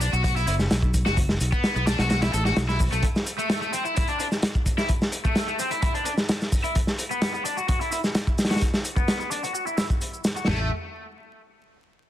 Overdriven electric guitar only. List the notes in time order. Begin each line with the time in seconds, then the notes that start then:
0.01 D4
0.13 F#4
0.24 F#4
0.36 E4
0.47 E4
1.06 F#4
1.52 B3
1.76 B3
1.87 D4
1.99 F#4
2.10 F#4
2.23 E4
2.34 A4
2.46 F#4
2.69 E4
2.92 A3
3.39 A3
3.62 A3
3.73 C4
3.85 E4
3.97 E4
4.09 D4
4.20 D4
4.78 E4
5.25 A3
5.48 A3
5.59 C4
5.71 E4
5.82 E4
5.94 D4
6.06 D4
6.64 E4
7.11 B3
7.34 B3
7.45 D4
7.57 F#4
7.69 F#4
7.81 E4
7.92 E4
8.50 F#4
8.97 B3
9.20 B3
9.31 D4
9.43 F#4
9.54 F#4
9.66 E4
9.78 E4
10.36 F#4
10.47 A3